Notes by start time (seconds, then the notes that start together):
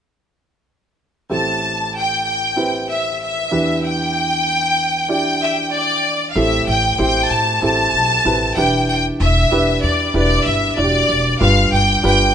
1.30 A1 A2 C4 E4 G4 A4 A5
1.95 G5
2.27 G5
2.56 C4 E4 G4 B4
2.90 E5
3.22 E5
3.51 E2 E3 D4 E4 G4 B4
3.85 G5
5.08 D4 E4 G4 D5 G5
5.43 E5
5.73 D5
6.31 F5
6.35 A1 A2 C4 E4 G4 A4 E5
6.67 A1 G5
6.98 A1 C4 E4 G4 C5 G5
7.30 A2 A5
7.62 A1 C4 E4 G4 A4 A5
7.93 B1
8.25 A1 C4 E4 G4 B4
8.56 E1 E3 D4 E4 G4 B4 G5
8.89 G5
9.20 E1 E5
9.51 E1 D4 E4 G4 B4
9.83 E2 D5
10.14 E1 D4 E4 G4 B4 D5
10.46 G1 E5
10.76 E1 D4 E4 F#4 D5
10.84 G4
11.09 E1
11.40 G1 G2 D4 F4 G4 B4 F5
11.72 G1 G5
12.03 G1 D4 F4 G4 B4 G5